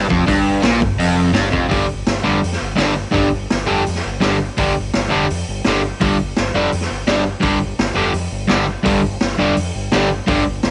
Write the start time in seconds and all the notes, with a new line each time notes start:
0.10 F1 F2, kick
0.27 G1 G2, kick, open hi-hat
0.62 A#1 A#2, snare, open hi-hat
0.80 G1 G2, kick
0.99 F1 F2, open hi-hat
1.33 G2, snare, open hi-hat
1.38 G1
1.51 F1 F2, kick
1.69 G1 G2 D3 G3, kick, open hi-hat
1.92 G1
2.07 G1, snare, open hi-hat
2.16 snare
2.24 F1 G2 D3 G3
2.43 F2, open hi-hat
2.52 snare
2.61 G1
2.76 G1 G2 D3 G3, snare, open hi-hat
3.11 G1 G2 D3 G3, kick, open hi-hat
3.32 G1
3.50 G1, snare, open hi-hat
3.67 F1 G2 D3 G3
3.86 F2, open hi-hat
3.95 snare
4.05 G1
4.21 G1 G2 D3 G3, snare, open hi-hat
4.57 G1 G2 D3 G3, kick, open hi-hat
4.79 G1
4.94 G1, snare, open hi-hat
5.09 G2 D3 G3
5.14 F1
5.30 F2, open hi-hat
5.48 G1
5.65 G1 G2 D3 G3, snare, open hi-hat
6.00 G1 G2 D3 G3, kick, open hi-hat
6.20 G1
6.37 G1, snare, open hi-hat
6.55 F1 G2 D3 G3
6.72 F2, open hi-hat
6.81 snare
6.91 G1
7.07 G1 G2 D3 G3, snare, open hi-hat
7.40 G1 G2 D3 G3, kick, open hi-hat
7.60 G1
7.79 G1, snare, open hi-hat
7.95 F1 G2 D3 G3
8.14 F2, open hi-hat
8.32 G1
8.48 G1 G2 D3 G3, snare, open hi-hat
8.83 G1 G2 D3 G3, kick, open hi-hat
9.04 G1
9.21 G1, snare, open hi-hat
9.30 snare
9.39 F1 G2 D3 G3
9.57 F2, open hi-hat
9.75 G1
9.92 G1 G2 D3 G3, snare, open hi-hat
10.27 G1 G2 D3 G3, kick, open hi-hat
10.47 G1
10.63 G1, snare, open hi-hat